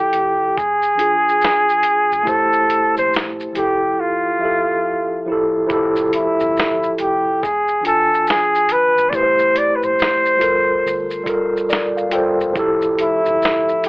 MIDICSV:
0, 0, Header, 1, 5, 480
1, 0, Start_track
1, 0, Key_signature, -1, "major"
1, 0, Tempo, 857143
1, 1271, Time_signature, 4, 2, 24, 8
1, 7777, End_track
2, 0, Start_track
2, 0, Title_t, "Flugelhorn"
2, 0, Program_c, 0, 56
2, 0, Note_on_c, 0, 67, 89
2, 323, Note_on_c, 0, 68, 92
2, 331, Note_off_c, 0, 67, 0
2, 1282, Note_on_c, 0, 69, 101
2, 1290, Note_off_c, 0, 68, 0
2, 1666, Note_off_c, 0, 69, 0
2, 1668, Note_on_c, 0, 72, 91
2, 1757, Note_off_c, 0, 72, 0
2, 2000, Note_on_c, 0, 67, 86
2, 2241, Note_on_c, 0, 65, 83
2, 2250, Note_off_c, 0, 67, 0
2, 2956, Note_off_c, 0, 65, 0
2, 3443, Note_on_c, 0, 64, 83
2, 3895, Note_off_c, 0, 64, 0
2, 3924, Note_on_c, 0, 67, 86
2, 4163, Note_on_c, 0, 68, 88
2, 4171, Note_off_c, 0, 67, 0
2, 4397, Note_off_c, 0, 68, 0
2, 4406, Note_on_c, 0, 69, 88
2, 4645, Note_on_c, 0, 68, 94
2, 4653, Note_off_c, 0, 69, 0
2, 4883, Note_on_c, 0, 71, 104
2, 4892, Note_off_c, 0, 68, 0
2, 5095, Note_on_c, 0, 74, 75
2, 5103, Note_off_c, 0, 71, 0
2, 5125, Note_on_c, 0, 72, 101
2, 5134, Note_off_c, 0, 74, 0
2, 5365, Note_on_c, 0, 74, 99
2, 5374, Note_off_c, 0, 72, 0
2, 5463, Note_on_c, 0, 71, 68
2, 5472, Note_off_c, 0, 74, 0
2, 5515, Note_on_c, 0, 72, 98
2, 5524, Note_off_c, 0, 71, 0
2, 6228, Note_off_c, 0, 72, 0
2, 7288, Note_on_c, 0, 64, 86
2, 7737, Note_off_c, 0, 64, 0
2, 7777, End_track
3, 0, Start_track
3, 0, Title_t, "Tine electric piano"
3, 0, Program_c, 1, 4
3, 0, Control_c, 1, 64, 127
3, 0, Note_on_c, 1, 53, 114
3, 0, Note_on_c, 1, 64, 95
3, 0, Note_on_c, 1, 67, 100
3, 0, Note_on_c, 1, 69, 118
3, 162, Note_off_c, 1, 53, 0
3, 168, Note_off_c, 1, 64, 0
3, 173, Note_off_c, 1, 67, 0
3, 179, Note_off_c, 1, 69, 0
3, 319, Control_c, 1, 64, 0
3, 423, Control_c, 1, 64, 127
3, 534, Note_on_c, 1, 52, 62
3, 545, Note_on_c, 1, 62, 57
3, 555, Note_on_c, 1, 65, 65
3, 567, Note_on_c, 1, 68, 76
3, 1170, Note_off_c, 1, 52, 0
3, 1176, Note_off_c, 1, 62, 0
3, 1181, Note_off_c, 1, 65, 0
3, 1187, Note_off_c, 1, 68, 0
3, 1248, Note_on_c, 1, 57, 85
3, 1259, Note_on_c, 1, 64, 91
3, 1271, Note_on_c, 1, 67, 81
3, 1279, Control_c, 1, 64, 0
3, 1281, Note_on_c, 1, 72, 94
3, 1362, Control_c, 1, 64, 127
3, 1976, Note_on_c, 1, 53, 68
3, 1980, Note_off_c, 1, 57, 0
3, 1980, Note_off_c, 1, 64, 0
3, 1987, Note_on_c, 1, 64, 61
3, 1991, Note_off_c, 1, 67, 0
3, 1996, Note_off_c, 1, 72, 0
3, 1997, Note_on_c, 1, 67, 70
3, 1998, Control_c, 1, 64, 0
3, 2008, Note_on_c, 1, 69, 73
3, 2105, Control_c, 1, 64, 127
3, 2402, Note_off_c, 1, 53, 0
3, 2408, Note_off_c, 1, 64, 0
3, 2413, Note_off_c, 1, 67, 0
3, 2419, Note_off_c, 1, 69, 0
3, 2459, Note_on_c, 1, 53, 67
3, 2470, Note_on_c, 1, 76, 62
3, 2481, Note_on_c, 1, 67, 60
3, 2492, Note_on_c, 1, 69, 73
3, 2884, Note_off_c, 1, 53, 0
3, 2889, Note_off_c, 1, 76, 0
3, 2895, Note_off_c, 1, 67, 0
3, 2900, Note_off_c, 1, 69, 0
3, 2946, Note_on_c, 1, 53, 79
3, 2957, Note_on_c, 1, 64, 78
3, 2968, Note_on_c, 1, 67, 72
3, 2979, Note_on_c, 1, 69, 97
3, 3158, Note_off_c, 1, 53, 0
3, 3163, Note_off_c, 1, 64, 0
3, 3169, Note_off_c, 1, 67, 0
3, 3172, Note_on_c, 1, 53, 102
3, 3175, Note_off_c, 1, 69, 0
3, 3184, Note_on_c, 1, 64, 115
3, 3195, Note_on_c, 1, 67, 99
3, 3199, Control_c, 1, 64, 0
3, 3205, Note_on_c, 1, 69, 122
3, 3294, Control_c, 1, 64, 127
3, 3999, Note_off_c, 1, 53, 0
3, 4005, Note_off_c, 1, 64, 0
3, 4010, Note_off_c, 1, 67, 0
3, 4015, Note_off_c, 1, 69, 0
3, 4159, Control_c, 1, 64, 0
3, 4266, Control_c, 1, 64, 127
3, 4373, Note_on_c, 1, 52, 72
3, 4383, Note_on_c, 1, 62, 61
3, 4395, Note_on_c, 1, 65, 67
3, 4405, Note_on_c, 1, 80, 81
3, 5010, Note_off_c, 1, 52, 0
3, 5015, Note_off_c, 1, 62, 0
3, 5021, Note_off_c, 1, 65, 0
3, 5026, Note_off_c, 1, 80, 0
3, 5101, Note_on_c, 1, 57, 91
3, 5112, Note_on_c, 1, 64, 82
3, 5117, Control_c, 1, 64, 0
3, 5123, Note_on_c, 1, 67, 85
3, 5134, Note_on_c, 1, 71, 81
3, 5168, Note_off_c, 1, 71, 0
3, 5169, Note_on_c, 1, 72, 100
3, 5232, Control_c, 1, 64, 127
3, 5807, Note_on_c, 1, 55, 79
3, 5818, Note_on_c, 1, 65, 73
3, 5826, Note_off_c, 1, 57, 0
3, 5829, Note_on_c, 1, 69, 69
3, 5832, Note_off_c, 1, 64, 0
3, 5837, Note_off_c, 1, 67, 0
3, 5838, Control_c, 1, 64, 0
3, 5840, Note_on_c, 1, 70, 84
3, 5860, Note_off_c, 1, 72, 0
3, 5950, Control_c, 1, 64, 127
3, 6238, Note_off_c, 1, 55, 0
3, 6244, Note_off_c, 1, 65, 0
3, 6249, Note_off_c, 1, 69, 0
3, 6255, Note_off_c, 1, 70, 0
3, 6291, Note_on_c, 1, 55, 91
3, 6303, Note_on_c, 1, 65, 75
3, 6313, Note_on_c, 1, 69, 74
3, 6325, Note_on_c, 1, 70, 89
3, 6549, Note_on_c, 1, 74, 68
3, 6689, Note_off_c, 1, 74, 0
3, 6703, Note_on_c, 1, 77, 65
3, 6720, Note_off_c, 1, 55, 0
3, 6726, Note_off_c, 1, 65, 0
3, 6731, Note_off_c, 1, 69, 0
3, 6737, Note_off_c, 1, 70, 0
3, 6772, Note_on_c, 1, 55, 87
3, 6783, Note_on_c, 1, 65, 80
3, 6786, Note_off_c, 1, 77, 0
3, 6789, Note_on_c, 1, 79, 69
3, 6794, Note_on_c, 1, 69, 87
3, 6805, Note_on_c, 1, 72, 96
3, 6991, Note_off_c, 1, 55, 0
3, 6997, Note_off_c, 1, 65, 0
3, 7002, Note_off_c, 1, 69, 0
3, 7008, Note_off_c, 1, 72, 0
3, 7013, Note_off_c, 1, 79, 0
3, 7019, Note_on_c, 1, 53, 122
3, 7029, Note_on_c, 1, 64, 97
3, 7039, Control_c, 1, 64, 0
3, 7041, Note_on_c, 1, 67, 106
3, 7052, Note_on_c, 1, 69, 123
3, 7137, Control_c, 1, 64, 127
3, 7777, Note_off_c, 1, 53, 0
3, 7777, Note_off_c, 1, 64, 0
3, 7777, Note_off_c, 1, 67, 0
3, 7777, Note_off_c, 1, 69, 0
3, 7777, End_track
4, 0, Start_track
4, 0, Title_t, "Fingered electric bass"
4, 0, Program_c, 2, 33
4, 79, Note_on_c, 2, 29, 88
4, 275, Note_off_c, 2, 29, 0
4, 325, Note_on_c, 2, 28, 99
4, 519, Note_off_c, 2, 28, 0
4, 1186, Note_on_c, 2, 32, 75
4, 1259, Note_off_c, 2, 32, 0
4, 1275, Note_on_c, 2, 33, 96
4, 1597, Note_off_c, 2, 33, 0
4, 1666, Note_on_c, 2, 34, 94
4, 1939, Note_off_c, 2, 34, 0
4, 1997, Note_on_c, 2, 29, 104
4, 2194, Note_off_c, 2, 29, 0
4, 3195, Note_on_c, 2, 29, 105
4, 3517, Note_off_c, 2, 29, 0
4, 3588, Note_on_c, 2, 31, 104
4, 3860, Note_off_c, 2, 31, 0
4, 3918, Note_on_c, 2, 29, 92
4, 4115, Note_off_c, 2, 29, 0
4, 4165, Note_on_c, 2, 28, 99
4, 4359, Note_off_c, 2, 28, 0
4, 5026, Note_on_c, 2, 32, 82
4, 5099, Note_off_c, 2, 32, 0
4, 5114, Note_on_c, 2, 33, 102
4, 5437, Note_off_c, 2, 33, 0
4, 5508, Note_on_c, 2, 34, 88
4, 5779, Note_off_c, 2, 34, 0
4, 5838, Note_on_c, 2, 31, 100
4, 6035, Note_off_c, 2, 31, 0
4, 6078, Note_on_c, 2, 38, 84
4, 6275, Note_off_c, 2, 38, 0
4, 6947, Note_on_c, 2, 28, 89
4, 7020, Note_off_c, 2, 28, 0
4, 7035, Note_on_c, 2, 29, 104
4, 7357, Note_off_c, 2, 29, 0
4, 7428, Note_on_c, 2, 31, 101
4, 7700, Note_off_c, 2, 31, 0
4, 7759, Note_on_c, 2, 29, 92
4, 7777, Note_off_c, 2, 29, 0
4, 7777, End_track
5, 0, Start_track
5, 0, Title_t, "Drums"
5, 72, Note_on_c, 9, 42, 54
5, 72, Note_on_c, 9, 82, 37
5, 128, Note_off_c, 9, 42, 0
5, 128, Note_off_c, 9, 82, 0
5, 322, Note_on_c, 9, 36, 91
5, 329, Note_on_c, 9, 82, 76
5, 378, Note_off_c, 9, 36, 0
5, 385, Note_off_c, 9, 82, 0
5, 461, Note_on_c, 9, 82, 45
5, 517, Note_off_c, 9, 82, 0
5, 555, Note_on_c, 9, 42, 69
5, 555, Note_on_c, 9, 82, 47
5, 611, Note_off_c, 9, 42, 0
5, 611, Note_off_c, 9, 82, 0
5, 722, Note_on_c, 9, 82, 44
5, 778, Note_off_c, 9, 82, 0
5, 793, Note_on_c, 9, 82, 67
5, 809, Note_on_c, 9, 38, 102
5, 849, Note_off_c, 9, 82, 0
5, 865, Note_off_c, 9, 38, 0
5, 948, Note_on_c, 9, 82, 45
5, 1004, Note_off_c, 9, 82, 0
5, 1025, Note_on_c, 9, 42, 69
5, 1025, Note_on_c, 9, 82, 51
5, 1081, Note_off_c, 9, 42, 0
5, 1081, Note_off_c, 9, 82, 0
5, 1189, Note_on_c, 9, 82, 48
5, 1245, Note_off_c, 9, 82, 0
5, 1271, Note_on_c, 9, 36, 115
5, 1273, Note_on_c, 9, 82, 62
5, 1327, Note_off_c, 9, 36, 0
5, 1329, Note_off_c, 9, 82, 0
5, 1417, Note_on_c, 9, 82, 51
5, 1473, Note_off_c, 9, 82, 0
5, 1512, Note_on_c, 9, 42, 66
5, 1512, Note_on_c, 9, 82, 49
5, 1568, Note_off_c, 9, 42, 0
5, 1568, Note_off_c, 9, 82, 0
5, 1664, Note_on_c, 9, 82, 49
5, 1720, Note_off_c, 9, 82, 0
5, 1757, Note_on_c, 9, 82, 51
5, 1772, Note_on_c, 9, 38, 105
5, 1813, Note_off_c, 9, 82, 0
5, 1828, Note_off_c, 9, 38, 0
5, 1906, Note_on_c, 9, 82, 39
5, 1962, Note_off_c, 9, 82, 0
5, 1990, Note_on_c, 9, 42, 50
5, 1990, Note_on_c, 9, 82, 39
5, 2046, Note_off_c, 9, 42, 0
5, 2046, Note_off_c, 9, 82, 0
5, 3192, Note_on_c, 9, 36, 119
5, 3193, Note_on_c, 9, 82, 62
5, 3248, Note_off_c, 9, 36, 0
5, 3249, Note_off_c, 9, 82, 0
5, 3338, Note_on_c, 9, 82, 54
5, 3394, Note_off_c, 9, 82, 0
5, 3432, Note_on_c, 9, 42, 69
5, 3432, Note_on_c, 9, 82, 52
5, 3488, Note_off_c, 9, 42, 0
5, 3488, Note_off_c, 9, 82, 0
5, 3586, Note_on_c, 9, 82, 47
5, 3642, Note_off_c, 9, 82, 0
5, 3678, Note_on_c, 9, 82, 49
5, 3693, Note_on_c, 9, 38, 113
5, 3734, Note_off_c, 9, 82, 0
5, 3749, Note_off_c, 9, 38, 0
5, 3826, Note_on_c, 9, 82, 43
5, 3882, Note_off_c, 9, 82, 0
5, 3911, Note_on_c, 9, 42, 51
5, 3911, Note_on_c, 9, 82, 38
5, 3967, Note_off_c, 9, 42, 0
5, 3967, Note_off_c, 9, 82, 0
5, 4161, Note_on_c, 9, 36, 98
5, 4169, Note_on_c, 9, 82, 77
5, 4217, Note_off_c, 9, 36, 0
5, 4225, Note_off_c, 9, 82, 0
5, 4302, Note_on_c, 9, 82, 45
5, 4358, Note_off_c, 9, 82, 0
5, 4395, Note_on_c, 9, 42, 67
5, 4395, Note_on_c, 9, 82, 46
5, 4451, Note_off_c, 9, 42, 0
5, 4451, Note_off_c, 9, 82, 0
5, 4561, Note_on_c, 9, 82, 47
5, 4617, Note_off_c, 9, 82, 0
5, 4632, Note_on_c, 9, 82, 70
5, 4649, Note_on_c, 9, 38, 104
5, 4688, Note_off_c, 9, 82, 0
5, 4705, Note_off_c, 9, 38, 0
5, 4789, Note_on_c, 9, 82, 49
5, 4845, Note_off_c, 9, 82, 0
5, 4866, Note_on_c, 9, 42, 74
5, 4866, Note_on_c, 9, 82, 50
5, 4922, Note_off_c, 9, 42, 0
5, 4922, Note_off_c, 9, 82, 0
5, 5028, Note_on_c, 9, 82, 50
5, 5084, Note_off_c, 9, 82, 0
5, 5111, Note_on_c, 9, 36, 119
5, 5115, Note_on_c, 9, 82, 64
5, 5167, Note_off_c, 9, 36, 0
5, 5171, Note_off_c, 9, 82, 0
5, 5258, Note_on_c, 9, 82, 55
5, 5314, Note_off_c, 9, 82, 0
5, 5352, Note_on_c, 9, 42, 71
5, 5352, Note_on_c, 9, 82, 49
5, 5408, Note_off_c, 9, 42, 0
5, 5408, Note_off_c, 9, 82, 0
5, 5504, Note_on_c, 9, 82, 49
5, 5560, Note_off_c, 9, 82, 0
5, 5597, Note_on_c, 9, 82, 52
5, 5612, Note_on_c, 9, 38, 103
5, 5653, Note_off_c, 9, 82, 0
5, 5668, Note_off_c, 9, 38, 0
5, 5745, Note_on_c, 9, 82, 41
5, 5801, Note_off_c, 9, 82, 0
5, 5831, Note_on_c, 9, 42, 54
5, 5831, Note_on_c, 9, 82, 39
5, 5887, Note_off_c, 9, 42, 0
5, 5887, Note_off_c, 9, 82, 0
5, 6088, Note_on_c, 9, 82, 78
5, 6144, Note_off_c, 9, 82, 0
5, 6220, Note_on_c, 9, 82, 48
5, 6276, Note_off_c, 9, 82, 0
5, 6307, Note_on_c, 9, 36, 91
5, 6312, Note_on_c, 9, 42, 67
5, 6312, Note_on_c, 9, 82, 49
5, 6363, Note_off_c, 9, 36, 0
5, 6368, Note_off_c, 9, 42, 0
5, 6368, Note_off_c, 9, 82, 0
5, 6479, Note_on_c, 9, 82, 46
5, 6535, Note_off_c, 9, 82, 0
5, 6551, Note_on_c, 9, 82, 68
5, 6568, Note_on_c, 9, 38, 107
5, 6607, Note_off_c, 9, 82, 0
5, 6624, Note_off_c, 9, 38, 0
5, 6707, Note_on_c, 9, 82, 51
5, 6763, Note_off_c, 9, 82, 0
5, 6784, Note_on_c, 9, 42, 78
5, 6784, Note_on_c, 9, 82, 54
5, 6840, Note_off_c, 9, 42, 0
5, 6840, Note_off_c, 9, 82, 0
5, 6947, Note_on_c, 9, 82, 50
5, 7003, Note_off_c, 9, 82, 0
5, 7031, Note_on_c, 9, 36, 122
5, 7034, Note_on_c, 9, 82, 64
5, 7087, Note_off_c, 9, 36, 0
5, 7090, Note_off_c, 9, 82, 0
5, 7178, Note_on_c, 9, 82, 56
5, 7234, Note_off_c, 9, 82, 0
5, 7272, Note_on_c, 9, 42, 71
5, 7272, Note_on_c, 9, 82, 51
5, 7328, Note_off_c, 9, 42, 0
5, 7328, Note_off_c, 9, 82, 0
5, 7424, Note_on_c, 9, 82, 47
5, 7480, Note_off_c, 9, 82, 0
5, 7518, Note_on_c, 9, 82, 54
5, 7533, Note_on_c, 9, 38, 119
5, 7574, Note_off_c, 9, 82, 0
5, 7589, Note_off_c, 9, 38, 0
5, 7665, Note_on_c, 9, 82, 43
5, 7721, Note_off_c, 9, 82, 0
5, 7750, Note_on_c, 9, 42, 54
5, 7750, Note_on_c, 9, 82, 37
5, 7777, Note_off_c, 9, 42, 0
5, 7777, Note_off_c, 9, 82, 0
5, 7777, End_track
0, 0, End_of_file